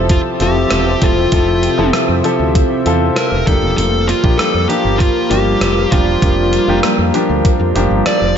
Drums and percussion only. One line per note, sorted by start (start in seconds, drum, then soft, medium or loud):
0.09 kick medium
0.09 closed hi-hat medium
0.40 closed hi-hat medium
0.71 cross-stick medium
0.71 closed hi-hat medium
1.02 kick medium
1.02 closed hi-hat medium
1.32 kick medium
1.32 closed hi-hat medium
1.63 closed hi-hat medium
1.93 cross-stick medium
1.93 closed hi-hat medium
2.24 closed hi-hat medium
2.55 kick medium
2.55 closed hi-hat medium
2.86 closed hi-hat medium
3.16 cross-stick medium
3.16 closed hi-hat medium
3.47 kick medium
3.47 closed hi-hat medium
3.78 closed hi-hat medium
4.09 closed hi-hat medium
4.24 kick medium
4.39 cross-stick loud
4.39 closed hi-hat medium
4.70 closed hi-hat medium
5.00 kick medium
5.00 closed hi-hat medium
5.31 closed hi-hat medium
5.61 cross-stick medium
5.61 closed hi-hat medium
5.92 kick medium
5.92 closed hi-hat medium
6.22 kick medium
6.22 closed hi-hat medium
6.53 closed hi-hat medium
6.83 cross-stick medium
6.83 closed hi-hat medium
7.14 closed hi-hat medium
7.45 kick medium
7.45 closed hi-hat medium
7.76 closed hi-hat medium
8.06 cross-stick medium
8.06 closed hi-hat medium